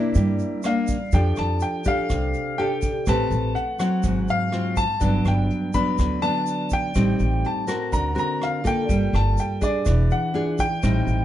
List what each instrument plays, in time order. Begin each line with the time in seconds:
Already playing: nylon-string guitar C3 A#3 D4 E4, grand piano E5
0.15 upright bass G2, nylon-string guitar G3, kick, closed hi-hat, shaker
0.39 closed hi-hat, shaker
0.63 nylon-string guitar A#3 D4, grand piano F5, cross-stick, closed hi-hat, shaker
0.87 kick, closed hi-hat, shaker
1.12 upright bass F2, nylon-string guitar F3 D4 G4 A4, grand piano G5, kick, closed hi-hat, shaker
1.36 upright bass F2, grand piano A5, cross-stick, closed hi-hat, shaker
1.60 grand piano G5, closed hi-hat, shaker
1.84 nylon-string guitar D4 G4 A4, grand piano F5, kick, shaker
2.09 upright bass C2, nylon-string guitar C3, kick, cross-stick, closed hi-hat, shaker
2.34 closed hi-hat, shaker
2.58 nylon-string guitar D4 G4 A4, grand piano G5, closed hi-hat
2.82 kick, closed hi-hat, shaker
3.06 upright bass A1, nylon-string guitar A3 C4 G4 B4, grand piano A5, kick, cross-stick, closed hi-hat, shaker
3.31 upright bass A1, closed hi-hat, shaker
3.55 grand piano F#5, closed hi-hat
3.79 nylon-string guitar F#3 C4, grand piano F#5, cross-stick, closed hi-hat, shaker
4.03 upright bass G#1, nylon-string guitar G#2, kick, closed hi-hat, shaker
4.28 grand piano F5, closed hi-hat, shaker
4.52 nylon-string guitar F#3 C4 F4, cross-stick, closed hi-hat
4.76 grand piano A5, kick, shaker
5.00 upright bass G1, nylon-string guitar G2 F#3 B3 D4, kick, closed hi-hat, shaker
5.25 upright bass G1, grand piano G5, cross-stick, closed hi-hat, shaker
5.50 closed hi-hat
5.73 nylon-string guitar F#3 B3 D4, grand piano B5, kick, closed hi-hat, shaker
5.98 upright bass D2, nylon-string guitar D3, kick, cross-stick, closed hi-hat, shaker
6.22 nylon-string guitar F#3 B3 D4, grand piano A5, closed hi-hat, shaker
6.46 closed hi-hat, shaker
6.70 grand piano G5, kick, closed hi-hat, shaker
6.95 upright bass A1, nylon-string guitar A2 G3 C4 D#4, kick, cross-stick, closed hi-hat, shaker
7.20 upright bass A1, closed hi-hat, shaker
7.44 grand piano A5, closed hi-hat
7.67 nylon-string guitar C4 F#4 A#4, cross-stick, closed hi-hat, shaker
7.92 upright bass D2, nylon-string guitar D3, grand piano A#5, kick, closed hi-hat, shaker
8.15 nylon-string guitar C4 F#4 A#4, closed hi-hat, shaker
8.19 grand piano A#5
8.41 grand piano F5, cross-stick, closed hi-hat
8.64 nylon-string guitar A#3 F4 A4, grand piano G5, kick, closed hi-hat, shaker
8.89 upright bass G1, nylon-string guitar G3, kick, closed hi-hat, shaker
9.13 upright bass G1, grand piano A5, cross-stick, closed hi-hat, shaker
9.37 grand piano G5, closed hi-hat, shaker
9.61 nylon-string guitar D4 G#4, grand piano D5, kick, closed hi-hat, shaker
9.86 upright bass E1, nylon-string guitar E3, kick, cross-stick, closed hi-hat, shaker
10.11 grand piano F#5, closed hi-hat, shaker
10.34 nylon-string guitar D4 F4 G#4, closed hi-hat
10.58 grand piano G5, kick, closed hi-hat, shaker
10.83 upright bass A1, nylon-string guitar A2 G3 C4 D#4, kick, cross-stick, closed hi-hat, shaker
11.07 upright bass A1, closed hi-hat, shaker